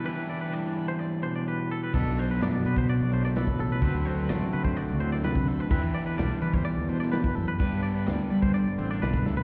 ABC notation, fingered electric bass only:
X:1
M:4/4
L:1/16
Q:1/4=127
K:Em
V:1 name="Fingered electric bass" clef=bass
z16 | B,,, B,,,3 F,, z B,,3 B,,,4 B,, A,,, z | D,, D,,3 A,,, z D,3 D,,4 D, D,, z | E,, E,,3 B,,, z E,3 E,,4 E, F,, z |
G,, G,,3 D,, z G,3 G,, A,,,2 B,,,2 D,,2 |]